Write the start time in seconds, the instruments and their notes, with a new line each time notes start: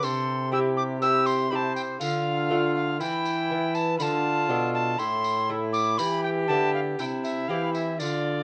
0.03 trombone C3, lute C3, viola A4, recorder C6, tambourine
0.52 lute C4 E4 G4, viola G4, recorder E6
0.77 recorder D6
1.01 lute C4 E4 G4, viola G4, recorder E6, tambourine
1.26 recorder C6, tambourine
1.50 lute C4 E4 G4, viola C5, recorder B5
1.55 recorder A5
1.76 recorder G5, tambourine
2.00 lute D3, trombone D3, viola F4, recorder F5, tambourine
2.50 lute A3 D4 F4
2.75 recorder F5
3.00 trombone E3, lute E3, viola E4, recorder G5, tambourine
3.25 tambourine
3.51 lute B3 E4
3.75 recorder A5, tambourine
3.98 trombone D3, lute D3, viola F4, recorder A5 B5, tambourine
4.49 lute B2 D4 A4, trombone B2
4.74 recorder A5
4.99 lute A2, trombone A2, viola E4, recorder C6, tambourine
5.24 tambourine
5.49 lute A3 E4 A4
5.73 recorder D6, tambourine
5.98 lute E3, trombone E3, viola G4, recorder B5, tambourine
6.23 recorder G5
6.48 lute D3 B3 E4 G4, trombone D3, recorder A5
6.74 recorder F5
6.99 trombone C3, lute C3, viola E4, recorder G5, tambourine
7.24 recorder E5, tambourine
7.48 lute E3 C4 E4 G4, trombone E3, recorder F5
7.73 recorder E5, tambourine
7.99 lute D3, trombone D3, viola F4, recorder D5, tambourine